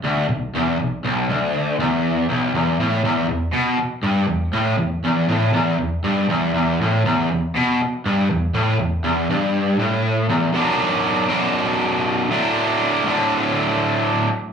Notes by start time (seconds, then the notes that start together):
0.04 D2
0.29 B1
0.55 E2
0.79 B1
1.04 B1
1.30 D2
1.80 E2
2.29 B1
2.54 E2
2.80 A2
3.04 E2
3.29 E2
3.53 B2
3.78 muted overdriven electric guitar stroke
4.03 G2
4.28 E2
4.53 A2
4.79 E2
5.05 E2
5.29 A2
5.54 E2
5.79 E2
6.04 G2
6.29 E2
6.54 E2
6.81 A2
7.05 E2
7.31 E2
7.55 B2
7.81 muted overdriven electric guitar stroke
8.06 G2
8.31 E2
8.54 A2
8.80 E2
9.04 E2
9.30 G2
9.79 A2
10.29 E2
10.52 B1 F#2 B2 F#3 D4
11.28 B1 F#2 B2 F#3 D4
12.28 D2 A2 D3 F#3 A3
12.33 D4
13.04 D2 A2 D3 F#3 A3
13.08 D4